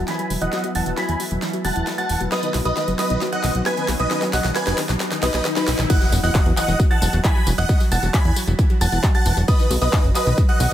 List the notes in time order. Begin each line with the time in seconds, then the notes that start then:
Already playing: F#3 B3 E4 B4 E5, riser
0.08 E3 G#5 B5 B6, snare, closed hi-hat
0.19 F#3, closed hi-hat
0.30 E1 F#3, open hi-hat
0.41 E1 E3 D#5 F#5 F#6, closed hi-hat
0.53 F#3, snare, closed hi-hat
0.64 F#3, closed hi-hat
0.75 E1 E3 F#5 A5 A6, open hi-hat
0.86 E1 F#3, closed hi-hat
0.97 F#3 G#5 B5 B6, snare, closed hi-hat
1.09 E2 E3, closed hi-hat
1.20 F#3, open hi-hat
1.31 E1 F#3, closed hi-hat
1.42 E3, snare, closed hi-hat
1.53 F#3, closed hi-hat
1.65 E1 F#3 F#5 A5 A6, open hi-hat
1.76 E1 E3, closed hi-hat
1.87 F#3, snare, closed hi-hat
1.98 F#3 F#5 A5 A6, closed hi-hat
2.09 E1 E3, open hi-hat
2.20 E1 F#3, closed hi-hat
2.32 F#3 B3 D#4 B4 D#5 D#6, snare, closed hi-hat
2.43 D#3, closed hi-hat
2.54 B1 F#3, snare, open hi-hat
2.65 B1 F#3 B4 D#5 D#6, closed hi-hat
2.77 D#3, snare, closed hi-hat
2.88 F#1 F#3, closed hi-hat
2.99 F#3 B4 D#5 D#6, snare, open hi-hat
3.10 B1 D#3, closed hi-hat
3.21 F#3, snare, closed hi-hat
3.32 F#3 D#5 F#5 F#6, closed hi-hat
3.44 B1 D#3, snare, open hi-hat
3.55 B1 F#3, closed hi-hat
3.66 F#3 B4 G#5 G#6, snare, closed hi-hat
3.77 D#3, closed hi-hat
3.88 B1 F#3, snare, open hi-hat
3.99 B1 F#3 B4 D#5 D#6, closed hi-hat
4.11 D#3, snare, closed hi-hat
4.22 F#3, snare, closed hi-hat
4.33 B1 F#3 D#5 F#5 F#6, snare, open hi-hat
4.44 B1 D#3, snare, closed hi-hat
4.55 F#3 B4 G#5 G#6, snare, closed hi-hat
4.67 F#1 F#3, snare, closed hi-hat
4.78 D#3, snare, open hi-hat
4.89 B1 F#3, snare, closed hi-hat
5.00 F#3, snare, closed hi-hat
5.11 D#3, snare, closed hi-hat
5.23 B1 F#3 B4 D#5 D#6, snare, open hi-hat
5.34 B1 F#3, snare, closed hi-hat
5.45 D#3, snare, closed hi-hat
5.56 F#3 D#4 B4 B5, snare, closed hi-hat
5.67 B1 F#3, snare, open hi-hat
5.78 B1 D#3, snare, closed hi-hat
5.90 E3 D#5 F#5 F#6, kick, closed hi-hat, tambourine, crash, impact
6.01 F#3, closed hi-hat, tambourine
6.12 E1 F#3, open hi-hat, tambourine
6.23 E1 E3 D#5 F#5 F#6, closed hi-hat, tambourine
6.35 F#3, kick, clap, closed hi-hat, tambourine
6.46 E2 F#3, closed hi-hat
6.57 E3 D#5 F#5 F#6, clap, open hi-hat, tambourine
6.68 E1 F#3, closed hi-hat, tambourine
6.80 F#3, kick, closed hi-hat, tambourine
6.91 E3 F#5 A5 A6, closed hi-hat
7.02 E1 F#3, open hi-hat, tambourine
7.13 E1 F#3, closed hi-hat, tambourine
7.24 E3 G#5 B5 B6, kick, clap, closed hi-hat, tambourine
7.36 F#3, closed hi-hat
7.47 E1 F#3, open hi-hat, tambourine
7.58 E1 E3 D#5 F#5 F#6, closed hi-hat, tambourine
7.69 F#3, kick, closed hi-hat, tambourine
7.80 F#3, open hi-hat, tambourine
7.92 E1 E3 F#5 A5 A6, open hi-hat, tambourine
8.03 E1 F#3, closed hi-hat, tambourine
8.14 F#3 G#5 B5 B6, kick, clap, closed hi-hat, tambourine
8.25 E2 E3, closed hi-hat
8.36 F#3, open hi-hat, tambourine
8.47 E1 F#3, closed hi-hat, tambourine
8.59 E3, kick, closed hi-hat, tambourine
8.70 F#3, closed hi-hat
8.81 E1 F#3 F#5 A5 A6, open hi-hat, tambourine
8.92 E1 E3, closed hi-hat, tambourine
9.03 F#3, kick, clap, closed hi-hat, tambourine
9.15 F#3 F#5 A5 A6, closed hi-hat
9.26 E1 E3, open hi-hat, tambourine
9.37 E1 F#3, closed hi-hat, tambourine
9.48 B4 D#5 D#6, kick, closed hi-hat, tambourine
9.59 D#3, closed hi-hat, tambourine
9.70 B1 F#3, open hi-hat, tambourine
9.81 B1 F#3 B4 D#5 D#6, closed hi-hat, tambourine
9.93 D#3, kick, clap, closed hi-hat, tambourine
10.04 F#1 F#3, closed hi-hat
10.15 F#3 B4 D#5 D#6, clap, open hi-hat, tambourine
10.26 B1 D#3, closed hi-hat, tambourine
10.38 F#3, kick, closed hi-hat, tambourine
10.49 F#3 D#5 F#5 F#6, closed hi-hat
10.60 B1 D#3, open hi-hat, tambourine